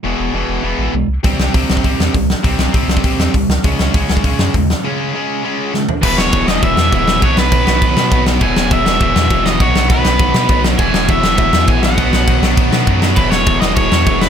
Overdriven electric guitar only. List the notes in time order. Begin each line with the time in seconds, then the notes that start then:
6.05 B4
6.17 C#5
6.48 D#5
6.64 E5
6.95 E5
7.23 C#5
7.38 B4
8.43 G#5
8.72 E5
9.03 E5
9.46 D#5
9.61 C#5
9.90 B4
10.79 G#5
11.10 E5
11.38 E5
11.69 G#5
11.84 F#5
13.17 B4
13.31 C#5
13.61 D#5
13.76 C#5
14.21 B4